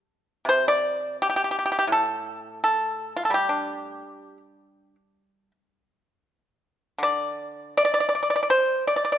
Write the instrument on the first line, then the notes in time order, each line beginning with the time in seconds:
pipa
0.45 C3 C5
0.68 D5
1.22 G4
1.30 G4
1.36 G4
1.44 G4
1.51 G4
1.59 G4
1.66 G4
1.72 G4
1.79 G4
1.87 A2
1.92 A4
2.64 A4
3.16 F4
3.25 A4
3.30 G3 G4
3.49 D4
6.98 D3
7.03 D5
7.77 D5
7.85 D5
7.94 D5
8.00 D5
8.09 D5
8.15 D5
8.23 D5
8.30 D5
8.36 D5
8.43 D5
8.50 C5
8.87 D5
8.96 D5
9.05 D5
9.12 D5